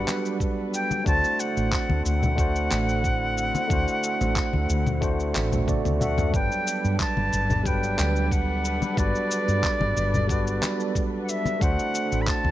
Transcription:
0.00 1.08 G3 medium
0.00 1.03 B3 medium
0.00 1.03 D4 medium
0.00 1.06 D4 medium
0.00 1.07 F#4 medium
0.00 1.03 A4 medium
0.00 1.03 B4 medium
0.00 1.08 B4 loud
0.00 0.37 F#5 medium
0.08 clap medium
0.08 high conga medium
0.08 cabasa medium
0.25 cabasa soft
0.40 kick medium
0.40 cabasa soft
0.74 1.05 G5 loud
0.74 cabasa medium
0.91 high conga medium
0.91 cabasa soft
1.04 1.21 D2 medium
1.04 6.30 D3 medium
1.04 2.33 A3 medium
1.04 6.30 A3 medium
1.04 6.30 C4 medium
1.04 2.34 D4 medium
1.04 6.30 E4 medium
1.04 2.35 F#4 medium
1.04 1.42 A5 loud
1.04 kick loud
1.04 cabasa soft
1.09 2.36 C5 loud
1.24 cabasa soft
1.40 2.06 F#5 loud
1.40 cabasa medium
1.57 1.70 A1 medium
1.57 cabasa soft
1.72 kick medium
1.72 clap medium
1.72 cabasa soft
1.89 2.03 D2 medium
1.89 high conga medium
2.05 2.67 D2 medium
2.05 5.64 F#5 loud
2.05 cabasa medium
2.23 low conga medium
2.23 cabasa soft
2.36 3.65 A3 medium
2.36 3.66 D4 medium
2.36 3.67 F#4 medium
2.36 kick loud
2.36 cabasa soft
2.40 3.68 C5 loud
2.56 cabasa soft
2.71 3.50 A1 medium
2.71 clap medium
2.71 high conga medium
2.71 cabasa medium
2.89 cabasa soft
3.04 kick medium
3.04 cabasa soft
3.38 cabasa medium
3.55 high conga medium
3.55 cabasa soft
3.68 3.85 D2 medium
3.68 4.97 A3 medium
3.68 4.98 D4 medium
3.68 4.99 F#4 medium
3.68 kick loud
3.68 cabasa soft
3.73 5.00 C5 loud
3.88 cabasa soft
4.03 cabasa medium
4.21 4.34 A1 medium
4.21 low conga medium
4.21 cabasa soft
4.36 kick medium
4.36 clap medium
4.36 cabasa soft
4.53 4.67 D2 medium
4.53 high conga medium
4.69 5.31 D2 medium
4.69 cabasa medium
4.87 low conga medium
4.87 cabasa soft
5.01 5.64 A3 medium
5.01 5.65 D4 medium
5.01 5.65 F#4 medium
5.01 5.65 C5 loud
5.01 kick loud
5.01 cabasa soft
5.20 cabasa soft
5.35 5.81 A1 medium
5.35 clap medium
5.35 high conga medium
5.35 cabasa medium
5.52 low conga medium
5.52 cabasa soft
5.67 5.97 A3 medium
5.67 5.97 D4 medium
5.67 5.97 F#4 medium
5.67 5.98 D5 medium
5.67 kick medium
5.67 high tom medium
5.67 cabasa soft
5.85 6.30 D2 medium
5.85 high tom medium
5.85 cabasa soft
5.99 6.29 A3 medium
5.99 6.30 D4 medium
5.99 6.30 F#4 medium
5.99 6.31 E5 medium
5.99 6.32 F#5 medium
5.99 low conga medium
5.99 cabasa medium
6.18 mid tom medium
6.18 high conga medium
6.18 cabasa soft
6.31 6.48 G1 medium
6.31 7.62 F#3 medium
6.31 7.61 G3 medium
6.31 11.57 B3 medium
6.31 7.61 D4 medium
6.31 11.58 D4 medium
6.31 11.57 A4 medium
6.31 11.57 B4 medium
6.31 6.96 G5 loud
6.31 kick loud
6.31 cabasa soft
6.36 7.63 B4 medium
6.52 cabasa soft
6.67 cabasa medium
6.84 6.97 G2 medium
6.84 cabasa soft
7.00 7.68 A5 medium
7.00 kick medium
7.00 clap medium
7.00 cabasa soft
7.17 7.30 G1 medium
7.17 high conga medium
7.33 7.95 G1 medium
7.33 cabasa medium
7.50 low conga medium
7.50 cabasa soft
7.63 8.94 F#3 medium
7.63 8.93 G3 medium
7.63 8.93 D4 medium
7.63 8.34 G5 medium
7.63 kick loud
7.63 cabasa soft
7.68 8.95 B4 loud
7.83 cabasa soft
7.99 8.77 D2 medium
7.99 clap medium
7.99 high conga medium
7.99 cabasa medium
8.16 cabasa soft
8.31 8.99 F#5 medium
8.31 kick medium
8.31 cabasa soft
8.65 cabasa medium
8.82 high conga medium
8.82 cabasa soft
8.95 9.12 G1 medium
8.95 10.25 G3 medium
8.95 10.25 D4 medium
8.95 10.26 F#4 medium
8.95 11.02 D5 loud
8.95 kick loud
8.95 cabasa soft
9.00 10.27 B4 loud
9.15 cabasa soft
9.31 cabasa medium
9.48 9.61 G2 medium
9.48 cabasa soft
9.63 kick loud
9.63 clap medium
9.63 cabasa soft
9.81 9.94 G1 loud
9.81 high conga loud
9.96 10.58 G1 medium
9.96 cabasa medium
10.14 low conga medium
10.14 cabasa soft
10.27 11.57 G3 medium
10.27 11.57 D4 medium
10.27 11.58 F#4 medium
10.27 kick loud
10.27 cabasa soft
10.32 11.59 B4 loud
10.47 cabasa soft
10.63 clap medium
10.63 high conga medium
10.63 cabasa medium
10.80 cabasa soft
10.95 kick loud
10.95 cabasa soft
11.23 11.31 F#5 medium
11.29 11.63 E5 medium
11.29 cabasa medium
11.46 high conga medium
11.46 cabasa soft
11.59 11.76 D2 medium
11.59 12.51 D3 medium
11.59 12.51 A3 medium
11.59 12.51 C4 medium
11.59 12.51 D4 medium
11.59 12.51 E4 medium
11.59 12.51 F#4 medium
11.59 12.23 F#5 loud
11.59 kick loud
11.59 cabasa soft
11.64 12.51 C5 loud
11.79 cabasa soft
11.95 cabasa medium
12.12 12.25 A1 medium
12.12 cabasa soft
12.22 12.30 B5 medium
12.27 12.51 A5 loud
12.27 kick loud
12.27 clap medium
12.27 cabasa soft
12.45 12.51 D2 loud
12.45 high conga medium

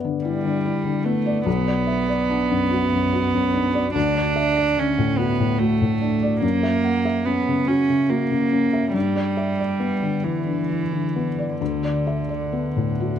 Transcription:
0.00 1.43 G2 soft
0.00 0.16 B3 soft
0.00 1.26 D5 soft
0.00 1.49 E5 soft
0.04 0.37 D3 soft
0.24 1.06 G3 medium
0.24 0.57 E4 soft
0.45 0.77 D3 soft
0.65 0.98 E4 soft
0.85 1.18 D3 soft
1.04 1.46 A3 medium
1.04 1.38 B3 soft
1.26 1.47 D5 soft
1.46 3.91 B1 soft
1.46 3.92 B3 medium
1.67 2.01 D5 soft
1.87 2.09 E5 soft
2.09 2.42 D5 soft
2.30 2.63 D4 soft
2.51 2.84 F#2 soft
2.71 3.04 F#4 soft
2.93 3.26 F#2 soft
3.13 3.46 F#4 soft
3.34 3.67 F#2 soft
3.54 3.87 D4 soft
3.74 3.95 D5 soft
3.95 6.38 D2 soft
3.95 4.81 D4 medium
4.15 4.48 D5 soft
4.36 4.57 E5 soft
4.57 4.90 D5 soft
4.77 5.10 D3 soft
4.77 5.19 C#4 medium
4.98 5.31 A2 soft
5.17 5.60 B3 medium
5.17 5.52 F#4 soft
5.40 5.73 A2 soft
5.59 6.41 A3 medium
5.59 5.93 F#4 soft
5.81 6.14 A2 soft
6.01 6.34 D4 soft
6.23 6.43 D5 soft
6.42 8.90 F#2 soft
6.42 7.27 A#3 medium
6.63 6.97 E5 soft
6.84 7.05 F#5 soft
7.05 7.39 E5 soft
7.25 7.69 B3 medium
7.25 7.60 C#4 soft
7.48 7.81 C#3 soft
7.67 8.11 C#4 medium
7.67 8.02 F#4 soft
7.89 8.23 C#3 soft
8.10 8.94 A#3 medium
8.10 8.44 F#4 soft
8.31 8.65 C#3 soft
8.52 8.86 C#4 soft
8.73 8.95 E5 soft
8.94 11.56 G2 soft
8.94 10.26 G3 medium
9.15 9.50 D5 soft
9.37 9.59 E5 soft
9.59 9.94 D5 soft
9.80 10.15 B3 soft
10.02 10.38 D3 soft
10.24 11.60 E3 medium
10.24 10.60 E4 soft
10.46 10.83 D3 soft
10.69 11.05 E4 soft
10.92 11.28 D3 soft
11.16 11.52 B3 soft
11.39 11.61 D5 soft
11.61 13.19 D2 soft
11.61 13.19 D3 soft
11.83 12.20 D5 soft
12.07 12.30 E5 soft
12.29 12.66 D5 soft
12.53 12.89 B3 soft
12.76 13.13 A2 soft
13.00 13.19 F#4 soft

